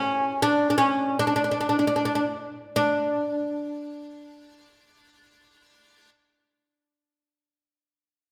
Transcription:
Already playing: C#4
0.42 D4
0.70 D4
0.78 C#4
1.19 D4
1.27 D4
1.36 D4
1.44 D4
1.51 D4
1.61 D4
1.69 D4
1.79 D4
1.87 D4
1.96 D4
2.05 D4
2.15 D4
2.76 D4

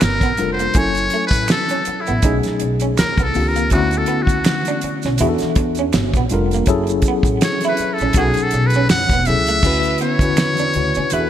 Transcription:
0.01 G1 A#4, finger snap, snare, closed hi-hat, maracas
0.21 A#1 B3, kick, closed hi-hat, maracas
0.37 F1 G3 D4 F4 A4 A#4, muted clean electric guitar stroke, closed hi-hat, maracas
0.52 C5
0.59 A#3, closed hi-hat, maracas
0.74 F#1 F#3 C#4 E4 A4 G#5, kick, closed hi-hat, maracas
0.78 C#5
0.95 closed hi-hat, maracas
1.10 A3, closed hi-hat
1.27 B4
1.31 A1, kick, closed hi-hat, maracas
1.48 A4, finger snap, snare, closed hi-hat, maracas
1.69 C#4, closed hi-hat, maracas
1.85 muted upright bass stroke, muted clean electric guitar stroke, closed hi-hat, maracas
2.01 E4
2.06 A1 B3, closed hi-hat, maracas
2.22 B1 B2 F#3 A3 C#4 D#4 G#4, kick, closed hi-hat, maracas
2.43 muted upright bass stroke, snare, closed hi-hat, maracas
2.60 B1, muted clean electric guitar stroke, closed hi-hat
2.80 C#4, closed hi-hat, maracas
2.98 D#2 A#4, finger snap, snare, closed hi-hat, maracas
3.18 C2 B3, kick, closed hi-hat, maracas
3.23 A4
3.34 C#2 D#3 A#3 C4 D4 F4 G4, muted clean electric guitar stroke, open hi-hat, maracas
3.48 A#4
3.56 A#3, closed hi-hat, maracas
3.70 D2 D3 A3 B3 C#4 E4 F#4, kick, closed hi-hat, maracas
3.91 closed hi-hat, maracas
3.98 A4
4.06 B3, closed hi-hat
4.22 F#4
4.27 C#2, kick, closed hi-hat, maracas
4.45 finger snap, snare, closed hi-hat, maracas
4.65 D4, closed hi-hat, maracas
4.81 muted upright bass stroke, muted clean electric guitar stroke, closed hi-hat, maracas
5.02 B1 C#4, snare, closed hi-hat, maracas
5.18 E2 E3 B3 D4 E4 F#4, closed hi-hat, maracas
5.22 G#4
5.29 A4
5.38 snare, closed hi-hat, maracas
5.42 muted upright bass stroke
5.55 E2, muted clean electric guitar stroke, kick, closed hi-hat
5.75 closed hi-hat, maracas
5.79 C#4
5.93 G1, finger snap, snare, closed hi-hat, maracas
6.13 A#1 B3, kick, closed hi-hat, maracas
6.29 F1 G3 D4 F4 A4, closed hi-hat, maracas
6.33 A#4, muted clean electric guitar stroke
6.51 A#3, closed hi-hat, maracas
6.66 F#1 F#3 C#4 E4 G#4 A4, kick, closed hi-hat, maracas
6.87 closed hi-hat, maracas
7.02 kick, closed hi-hat, maracas
7.08 B3
7.23 A1, kick, closed hi-hat, maracas
7.41 C#5, finger snap, snare, closed hi-hat, maracas
7.61 closed hi-hat, maracas
7.65 E4 B4
7.77 muted upright bass stroke, closed hi-hat, maracas
7.82 muted clean electric guitar stroke
7.93 A4
7.98 A1 C#4, closed hi-hat, maracas
8.13 B1 B2 F#3 C#4 D#4, kick, closed hi-hat, maracas
8.17 F#4 G#4 A4
8.34 muted upright bass stroke, closed hi-hat, maracas
8.43 A4
8.51 B1, muted clean electric guitar stroke, closed hi-hat, maracas
8.67 B4, closed hi-hat
8.73 C#4, maracas
8.89 F#1 F#5, finger snap, snare, closed hi-hat, maracas
9.09 E1 B3, kick, closed hi-hat, maracas
9.25 C#2 F#3 C#4 E4 G#4 E5, muted clean electric guitar stroke, closed hi-hat, maracas
9.30 A4
9.47 A3, closed hi-hat, maracas
9.63 D2 D3 C#4 E4 F#4, kick, crash, maracas
9.67 B4
9.83 closed hi-hat, maracas
9.98 B3 C#5, closed hi-hat, maracas
10.19 E2 D3 C#4 E4, kick, closed hi-hat, maracas
10.23 F#4 B4
10.37 finger snap, snare, closed hi-hat, maracas
10.57 D4, closed hi-hat, maracas
10.74 D2 C#3 D3 E4 F#4 C#5, muted clean electric guitar stroke, closed hi-hat
10.95 D3 C#4, closed hi-hat, maracas
11.10 E2 E3 B3 D4 E4 F#4 G#4 B4, closed hi-hat, maracas
11.21 A4

